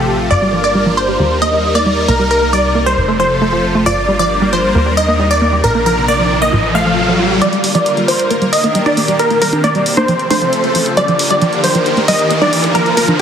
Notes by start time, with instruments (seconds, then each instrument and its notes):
Already playing: analog synth bass A1, supersaw synth C3 F3 A3 F4 G4 A4
0.31 analog synth bass G1, supersaw synth G3 A#3 D4 A#4 D5
0.42 synth arpeggio sound G3
0.53 synth arpeggio sound F3
0.64 supersaw synth D5
0.75 synth arpeggio sound G3
0.86 synth arpeggio sound F3
0.97 supersaw synth C5
1.08 synth arpeggio sound G3
1.19 analog synth bass D#2, synth arpeggio sound G3, supersaw synth A#3 D#4 A#4
1.42 synth arpeggio sound A#3, supersaw synth D#5
1.53 synth arpeggio sound G3
1.75 synth arpeggio sound A#3, supersaw synth D5
1.86 synth arpeggio sound G3
2.08 analog synth bass C2, supersaw synth C3 A#4, synth arpeggio sound A#3
2.19 synth arpeggio sound G3
2.31 supersaw synth A#4
2.42 synth arpeggio sound A#3
2.53 synth arpeggio sound G3, supersaw synth D5
2.75 synth arpeggio sound A#3
2.86 synth arpeggio sound G3, supersaw synth C5
2.97 analog synth bass F1, supersaw synth F3 A3 F4 A4
3.08 synth arpeggio sound A3
3.19 synth arpeggio sound F3, supersaw synth C5
3.42 synth arpeggio sound A3
3.53 synth arpeggio sound F3
3.75 synth arpeggio sound A3
3.86 analog synth bass G1, synth arpeggio sound F3, supersaw synth G3 A#3 D4 A#4 D5, riser
4.08 synth arpeggio sound G3
4.19 synth arpeggio sound F3, supersaw synth D5
4.42 synth arpeggio sound G3
4.53 synth arpeggio sound F3, supersaw synth C5
4.75 analog synth bass D#2, synth arpeggio sound A#3, supersaw synth D#4
4.86 synth arpeggio sound G3
4.97 supersaw synth D#5
5.08 synth arpeggio sound A#3
5.19 synth arpeggio sound G3
5.31 supersaw synth D5
5.42 synth arpeggio sound A#3
5.53 synth arpeggio sound G3
5.64 analog synth bass A#1, supersaw synth C3 F3 A#3 D4 A#4
5.75 synth arpeggio sound A#3
5.86 synth arpeggio sound F3, supersaw synth A#4
6.08 synth arpeggio sound A#3, supersaw synth D5
6.19 synth arpeggio sound F3
6.42 synth arpeggio sound A#3, supersaw synth D#5
6.53 analog synth bass A1, supersaw synth C3 F3 A3 F4 A4, synth arpeggio sound F3
6.75 synth arpeggio sound A3, supersaw synth F5
6.86 synth arpeggio sound F3
7.08 synth arpeggio sound F3
7.19 synth arpeggio sound F4
7.42 supersaw synth D3 G3 A#3 F4 A#4 D5, synth arpeggio sound F3, closed hi-hat, riser
7.53 closed hi-hat
7.64 synth arpeggio sound G3, open hi-hat
7.75 synth arpeggio sound F3, supersaw synth D5, closed hi-hat
7.86 closed hi-hat
7.97 synth arpeggio sound G3, closed hi-hat
8.08 synth arpeggio sound F3, supersaw synth C5, open hi-hat
8.19 closed hi-hat
8.31 supersaw synth D#3 D4 G4, synth arpeggio sound A#3, closed hi-hat
8.42 synth arpeggio sound G3, closed hi-hat
8.53 supersaw synth D#5, open hi-hat
8.64 synth arpeggio sound A#3, closed hi-hat
8.75 synth arpeggio sound G3, closed hi-hat
8.86 supersaw synth D5, closed hi-hat, high conga
8.97 synth arpeggio sound A#3, open hi-hat
9.08 synth arpeggio sound G3, closed hi-hat
9.19 supersaw synth C4 A#4, closed hi-hat
9.30 synth arpeggio sound A#3, closed hi-hat
9.42 synth arpeggio sound G3, supersaw synth A#4, open hi-hat
9.53 closed hi-hat, high conga
9.64 synth arpeggio sound A#3, supersaw synth D5, closed hi-hat
9.75 synth arpeggio sound G3, closed hi-hat
9.86 open hi-hat
9.97 synth arpeggio sound A#3, supersaw synth C5, closed hi-hat, high conga
10.08 supersaw synth F3 A3 A4 C5, synth arpeggio sound F3, closed hi-hat
10.19 closed hi-hat
10.30 synth arpeggio sound A3, supersaw synth C5, open hi-hat, high conga
10.42 synth arpeggio sound F3, closed hi-hat
10.53 closed hi-hat
10.64 synth arpeggio sound A3, closed hi-hat
10.75 synth arpeggio sound F3, open hi-hat
10.86 closed hi-hat
10.97 supersaw synth F3 A#3 D4 G4 A#4 D5, synth arpeggio sound G3, closed hi-hat
11.08 synth arpeggio sound F3, closed hi-hat
11.19 open hi-hat
11.30 synth arpeggio sound G3, supersaw synth D5, closed hi-hat
11.42 synth arpeggio sound F3, closed hi-hat
11.53 closed hi-hat
11.64 synth arpeggio sound G3, supersaw synth C5, open hi-hat
11.75 synth arpeggio sound F3, closed hi-hat
11.86 supersaw synth D#3, closed hi-hat
11.97 synth arpeggio sound A#3, closed hi-hat
12.08 synth arpeggio sound G3, supersaw synth D#5, open hi-hat
12.19 closed hi-hat
12.31 synth arpeggio sound A#3, closed hi-hat
12.41 synth arpeggio sound G3, supersaw synth D5, closed hi-hat, high conga
12.53 open hi-hat
12.64 synth arpeggio sound A#3, closed hi-hat
12.75 supersaw synth D3 C4 F4 A#4, synth arpeggio sound F3, closed hi-hat
12.86 closed hi-hat
12.97 synth arpeggio sound A#3, supersaw synth A#4, open hi-hat
13.08 synth arpeggio sound F3, closed hi-hat, high conga